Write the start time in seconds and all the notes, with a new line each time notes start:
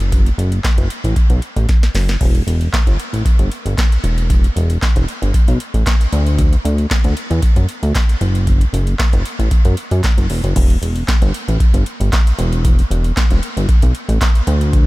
Already playing: F#1
0.00 closed hi-hat
0.12 kick, closed hi-hat
0.26 closed hi-hat
0.38 F#1, closed hi-hat
0.52 closed hi-hat
0.64 kick, snare, clap, closed hi-hat
0.78 F#1, closed hi-hat
0.90 closed hi-hat
1.04 A1, closed hi-hat
1.16 kick, closed hi-hat
1.30 B1, closed hi-hat
1.42 closed hi-hat
1.56 A1, closed hi-hat
1.69 kick, snare, closed hi-hat
1.83 snare, closed hi-hat
1.95 F#1, snare, open hi-hat
2.09 snare, closed hi-hat
2.21 E1, kick, crash
2.35 closed hi-hat
2.47 E1, closed hi-hat
2.61 closed hi-hat
2.73 kick, snare, clap, closed hi-hat
2.87 G1, closed hi-hat
3.00 closed hi-hat
3.13 A1, closed hi-hat
3.25 kick, closed hi-hat
3.39 G1, closed hi-hat
3.52 closed hi-hat
3.66 G1, closed hi-hat
3.78 kick, snare, clap, closed hi-hat
3.92 closed hi-hat
4.04 E1, closed hi-hat
4.18 closed hi-hat
4.30 kick, closed hi-hat
4.44 closed hi-hat
4.56 E1, closed hi-hat
4.70 closed hi-hat
4.82 kick, snare, clap, closed hi-hat
4.96 E1, closed hi-hat
5.08 closed hi-hat
5.22 G1, closed hi-hat
5.34 kick, closed hi-hat
5.48 B1, closed hi-hat
5.60 closed hi-hat
5.74 A1, closed hi-hat
5.86 kick, snare, clap, closed hi-hat
6.01 closed hi-hat
6.13 D2, closed hi-hat
6.27 closed hi-hat
6.39 kick, closed hi-hat
6.53 closed hi-hat
6.65 D2, closed hi-hat
6.78 closed hi-hat
6.91 kick, snare, clap, closed hi-hat
7.04 D2, closed hi-hat
7.17 closed hi-hat
7.31 E2, closed hi-hat
7.42 kick, closed hi-hat
7.56 F#2, closed hi-hat
7.69 closed hi-hat
7.83 D2, closed hi-hat
7.95 kick, snare, clap, closed hi-hat
8.09 closed hi-hat
8.21 F#1, closed hi-hat
8.35 closed hi-hat
8.47 kick, closed hi-hat
8.61 closed hi-hat
8.73 F#1, closed hi-hat
8.87 closed hi-hat
8.99 kick, snare, clap, closed hi-hat
9.13 F#1, closed hi-hat
9.25 closed hi-hat
9.39 A1, closed hi-hat
9.51 kick, closed hi-hat
9.65 F#2, closed hi-hat
9.77 closed hi-hat
9.91 F#2, closed hi-hat
10.04 kick, snare, clap, closed hi-hat
10.18 F#1, closed hi-hat
10.30 E1, open hi-hat
10.44 F#1, closed hi-hat
10.56 E1, kick, closed hi-hat, crash
10.70 closed hi-hat
10.82 E1, closed hi-hat
10.96 closed hi-hat
11.08 kick, snare, clap, closed hi-hat
11.22 G1, closed hi-hat
11.34 closed hi-hat
11.48 A1, closed hi-hat
11.60 kick, closed hi-hat
11.74 G1, closed hi-hat
11.86 closed hi-hat
12.00 G1, closed hi-hat
12.13 kick, snare, clap, closed hi-hat
12.27 closed hi-hat
12.39 E1, closed hi-hat
12.53 closed hi-hat
12.65 kick, closed hi-hat
12.79 closed hi-hat
12.91 E1, closed hi-hat
13.04 closed hi-hat
13.17 kick, snare, clap, closed hi-hat
13.31 E1, closed hi-hat
13.43 closed hi-hat
13.57 G1, closed hi-hat
13.69 kick, closed hi-hat
13.82 B1, closed hi-hat
13.95 closed hi-hat
14.09 A1, closed hi-hat
14.21 kick, snare, clap, closed hi-hat
14.35 closed hi-hat
14.47 D2, closed hi-hat
14.61 closed hi-hat
14.73 kick, closed hi-hat